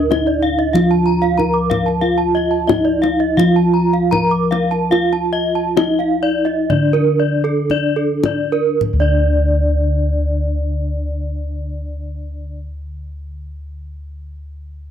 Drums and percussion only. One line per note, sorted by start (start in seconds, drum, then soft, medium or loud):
0.12 kendang slap soft
0.12 kendang high medium
0.75 kendang low medium
1.23 kendang slap soft
1.39 kendang slap soft
1.39 kendang low medium
1.71 kendang slap soft
1.71 kendang high medium
1.71 kendang low medium
1.88 kendang slap soft
2.37 kendang slap soft
2.69 kendang slap soft
2.69 kendang high medium
2.69 kendang low medium
3.03 kendang high medium
3.39 kendang low loud
3.94 kendang slap soft
4.13 kendang slap soft
4.13 kendang high medium
4.13 kendang low medium
4.52 kendang slap soft
4.52 kendang high medium
4.72 kendang slap soft
4.92 kendang high medium
5.13 kendang slap soft
5.77 kendang slap soft
5.77 kendang high medium
6.00 kendang slap soft
6.46 kendang slap soft
6.70 kendang low medium
6.94 kendang slap soft
7.45 kendang slap soft
7.70 kendang slap soft
7.70 kendang low medium
8.23 kendang slap soft
8.23 kendang high medium
8.23 kendang low medium
8.53 kendang slap soft
8.81 kendang low medium